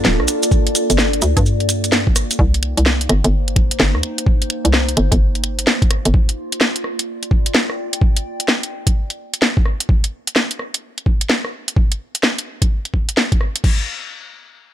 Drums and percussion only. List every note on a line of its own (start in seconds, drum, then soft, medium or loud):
0.05 snare loud
0.05 maracas soft
0.20 cross-stick medium
0.28 closed hi-hat loud
0.28 maracas medium
0.43 closed hi-hat medium
0.43 maracas medium
0.51 kick loud
0.51 maracas soft
0.67 closed hi-hat medium
0.75 closed hi-hat loud
0.75 maracas medium
0.90 closed hi-hat medium
0.90 maracas medium
0.98 snare loud
0.98 maracas soft
1.13 closed hi-hat medium
1.22 closed hi-hat loud
1.22 maracas medium
1.37 kick loud
1.37 closed hi-hat medium
1.37 maracas medium
1.46 maracas soft
1.60 closed hi-hat soft
1.69 closed hi-hat loud
1.69 maracas medium
1.84 closed hi-hat medium
1.84 maracas soft
1.92 snare loud
1.92 maracas soft
2.07 kick loud
2.16 cross-stick medium
2.16 closed hi-hat loud
2.16 maracas medium
2.31 closed hi-hat medium
2.31 maracas medium
2.39 kick loud
2.54 closed hi-hat medium
2.63 closed hi-hat loud
2.77 closed hi-hat medium
2.86 snare loud
3.01 closed hi-hat medium
3.09 cross-stick medium
3.09 closed hi-hat loud
3.24 closed hi-hat medium
3.48 closed hi-hat medium
3.56 kick loud
3.56 closed hi-hat loud
3.71 closed hi-hat medium
3.80 snare loud
3.95 cross-stick medium
4.03 closed hi-hat loud
4.18 closed hi-hat medium
4.26 kick loud
4.42 closed hi-hat soft
4.50 closed hi-hat loud
4.65 closed hi-hat medium
4.74 snare loud
4.89 closed hi-hat medium
4.97 closed hi-hat loud
5.12 kick loud
5.12 closed hi-hat medium
5.35 closed hi-hat soft
5.44 closed hi-hat loud
5.59 closed hi-hat medium
5.67 snare loud
5.82 kick loud
5.82 closed hi-hat soft
5.91 cross-stick medium
5.91 closed hi-hat loud
6.05 closed hi-hat medium
6.14 kick loud
6.29 closed hi-hat medium
6.52 closed hi-hat medium
6.61 snare loud
6.76 closed hi-hat medium
6.84 cross-stick soft
6.99 closed hi-hat medium
7.23 closed hi-hat soft
7.31 kick loud
7.46 closed hi-hat medium
7.55 snare loud
7.70 cross-stick medium
7.93 closed hi-hat medium
8.01 kick loud
8.17 closed hi-hat medium
8.40 closed hi-hat medium
8.48 snare loud
8.63 closed hi-hat medium
8.87 kick medium
8.87 closed hi-hat medium
9.10 closed hi-hat soft
9.34 closed hi-hat medium
9.42 snare loud
9.57 kick loud
9.66 cross-stick medium
9.80 closed hi-hat medium
9.89 kick loud
10.04 closed hi-hat medium
10.27 closed hi-hat medium
10.36 snare loud
10.51 closed hi-hat medium
10.59 cross-stick soft
10.74 closed hi-hat medium
10.98 closed hi-hat soft
11.06 kick medium
11.21 closed hi-hat medium
11.30 snare loud
11.45 cross-stick medium
11.68 closed hi-hat medium
11.76 kick loud
11.92 closed hi-hat medium
12.15 closed hi-hat medium
12.23 snare loud
12.38 closed hi-hat medium
12.62 kick loud
12.62 closed hi-hat medium
12.85 closed hi-hat soft
12.94 kick medium
13.09 closed hi-hat medium
13.17 snare loud
13.32 kick loud
13.32 closed hi-hat soft
13.41 cross-stick medium
13.56 closed hi-hat medium
13.64 kick loud
13.64 crash medium